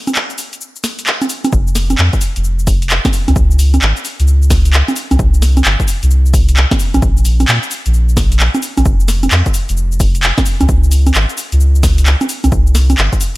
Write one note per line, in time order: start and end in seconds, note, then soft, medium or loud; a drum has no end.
0.07 closed hi-hat medium
0.07 high conga medium
0.07 cabasa soft
0.15 clap loud
0.15 cabasa soft
0.30 closed hi-hat soft
0.30 cabasa soft
0.38 open hi-hat loud
0.38 cabasa medium
0.53 closed hi-hat medium
0.53 cabasa soft
0.61 cabasa soft
0.76 cabasa soft
0.84 snare medium
0.84 open hi-hat loud
0.84 cabasa medium
0.99 closed hi-hat medium
0.99 cabasa soft
1.07 clap loud
1.07 cabasa soft
1.22 closed hi-hat medium
1.22 high conga medium
1.22 cabasa soft
1.29 open hi-hat loud
1.29 cabasa medium
1.44 closed hi-hat medium
1.44 high conga medium
1.44 cabasa soft
1.53 1.95 F1 loud
1.53 kick loud
1.53 cabasa soft
1.67 cabasa soft
1.75 snare medium
1.75 open hi-hat loud
1.75 cabasa medium
1.90 closed hi-hat medium
1.90 high conga medium
1.90 cabasa soft
1.98 2.10 F2 medium
1.98 clap loud
1.98 cabasa soft
2.13 kick medium
2.13 closed hi-hat soft
2.13 cabasa soft
2.21 open hi-hat loud
2.21 cabasa medium
2.36 2.99 F1 loud
2.36 closed hi-hat medium
2.36 cabasa soft
2.44 cabasa soft
2.59 cabasa soft
2.67 kick loud
2.67 open hi-hat loud
2.67 cabasa medium
2.82 closed hi-hat medium
2.82 cabasa soft
2.90 clap loud
2.90 cabasa soft
3.05 kick loud
3.05 snare medium
3.05 closed hi-hat medium
3.05 high conga medium
3.05 cabasa soft
3.13 open hi-hat loud
3.13 cabasa medium
3.28 3.34 C#2 medium
3.28 closed hi-hat medium
3.28 high conga medium
3.28 cabasa soft
3.36 3.79 C#2 loud
3.36 kick loud
3.36 cabasa soft
3.51 cabasa soft
3.59 open hi-hat loud
3.59 cabasa medium
3.74 closed hi-hat medium
3.74 high conga medium
3.74 cabasa soft
3.82 3.93 G#1 medium
3.82 clap loud
3.82 cabasa soft
3.97 closed hi-hat soft
3.97 cabasa soft
4.05 open hi-hat loud
4.05 cabasa medium
4.20 4.82 C#2 loud
4.20 closed hi-hat medium
4.20 cabasa soft
4.28 cabasa soft
4.42 cabasa soft
4.50 kick loud
4.50 snare medium
4.50 open hi-hat loud
4.50 cabasa medium
4.65 closed hi-hat medium
4.65 cabasa soft
4.73 clap loud
4.73 cabasa soft
4.88 closed hi-hat medium
4.88 high conga medium
4.88 cabasa soft
4.96 open hi-hat loud
4.96 cabasa medium
5.11 5.17 C2 medium
5.11 closed hi-hat medium
5.11 high conga medium
5.11 cabasa soft
5.19 5.62 C2 loud
5.19 kick loud
5.19 cabasa soft
5.34 cabasa soft
5.42 snare medium
5.42 open hi-hat loud
5.42 cabasa medium
5.57 closed hi-hat medium
5.57 high conga medium
5.57 cabasa soft
5.65 5.76 G1 medium
5.65 clap loud
5.65 cabasa soft
5.80 kick medium
5.80 closed hi-hat soft
5.80 cabasa soft
5.88 open hi-hat medium
5.88 cabasa medium
6.03 6.65 C2 loud
6.03 closed hi-hat medium
6.03 cabasa soft
6.11 cabasa soft
6.26 cabasa soft
6.34 kick loud
6.34 open hi-hat loud
6.34 cabasa medium
6.49 closed hi-hat medium
6.49 cabasa soft
6.57 clap loud
6.57 cabasa soft
6.71 kick loud
6.71 snare medium
6.71 closed hi-hat soft
6.71 high conga medium
6.71 cabasa soft
6.80 open hi-hat medium
6.80 cabasa medium
6.94 7.00 A#1 medium
6.94 closed hi-hat medium
6.94 high conga medium
6.94 cabasa soft
7.02 7.45 A#1 loud
7.02 kick loud
7.02 cabasa soft
7.17 cabasa soft
7.25 open hi-hat loud
7.25 cabasa medium
7.40 closed hi-hat medium
7.40 high conga medium
7.40 cabasa soft
7.48 7.59 A#2 medium
7.48 clap loud
7.48 cabasa soft
7.63 closed hi-hat soft
7.63 cabasa soft
7.71 open hi-hat medium
7.71 cabasa medium
7.86 8.49 A#1 loud
7.86 closed hi-hat medium
7.86 cabasa soft
7.94 cabasa soft
8.09 cabasa soft
8.17 kick loud
8.17 snare medium
8.17 open hi-hat loud
8.17 cabasa medium
8.32 closed hi-hat medium
8.32 cabasa soft
8.40 clap loud
8.40 cabasa soft
8.55 closed hi-hat soft
8.55 high conga medium
8.55 cabasa soft
8.62 open hi-hat medium
8.62 cabasa medium
8.77 8.84 A#1 loud
8.77 closed hi-hat medium
8.77 high conga medium
8.77 cabasa soft
8.85 9.28 F1 loud
8.85 kick loud
8.85 cabasa soft
9.00 cabasa soft
9.08 snare medium
9.08 open hi-hat loud
9.08 cabasa medium
9.23 closed hi-hat medium
9.23 high conga medium
9.23 cabasa soft
9.31 9.42 F2 medium
9.31 clap loud
9.31 cabasa soft
9.46 kick medium
9.46 closed hi-hat soft
9.46 cabasa soft
9.54 open hi-hat medium
9.54 cabasa medium
9.69 10.32 F1 loud
9.69 closed hi-hat medium
9.69 cabasa soft
9.77 cabasa soft
9.92 cabasa soft
10.00 kick loud
10.00 open hi-hat loud
10.00 cabasa medium
10.15 closed hi-hat medium
10.15 cabasa soft
10.23 clap loud
10.23 cabasa soft
10.38 kick loud
10.38 snare medium
10.38 closed hi-hat medium
10.38 high conga medium
10.38 cabasa soft
10.46 open hi-hat medium
10.46 cabasa medium
10.61 10.67 C#2 medium
10.61 closed hi-hat medium
10.61 high conga medium
10.61 cabasa soft
10.69 11.11 C#2 loud
10.69 kick loud
10.69 cabasa soft
10.83 cabasa soft
10.92 open hi-hat loud
10.92 cabasa medium
11.07 closed hi-hat medium
11.07 high conga medium
11.07 cabasa soft
11.14 11.26 G#1 medium
11.14 clap loud
11.14 cabasa soft
11.29 closed hi-hat soft
11.29 cabasa soft
11.38 open hi-hat medium
11.38 cabasa medium
11.52 12.15 C#2 loud
11.52 closed hi-hat medium
11.52 cabasa soft
11.60 cabasa soft
11.75 cabasa soft
11.83 kick loud
11.83 snare medium
11.83 open hi-hat loud
11.83 cabasa medium
11.98 closed hi-hat medium
11.98 cabasa soft
12.06 clap loud
12.06 cabasa soft
12.21 closed hi-hat medium
12.21 high conga medium
12.21 cabasa soft
12.29 open hi-hat medium
12.29 cabasa medium
12.44 12.50 C2 medium
12.44 closed hi-hat medium
12.44 high conga medium
12.44 cabasa soft
12.52 12.95 C2 loud
12.52 kick loud
12.52 cabasa soft
12.67 cabasa soft
12.75 snare medium
12.75 open hi-hat loud
12.75 cabasa medium
12.90 closed hi-hat medium
12.90 high conga medium
12.90 cabasa soft
12.98 13.09 G1 medium
12.98 clap loud
12.98 cabasa soft
13.13 kick medium
13.13 closed hi-hat soft
13.13 cabasa soft
13.21 open hi-hat loud
13.21 cabasa medium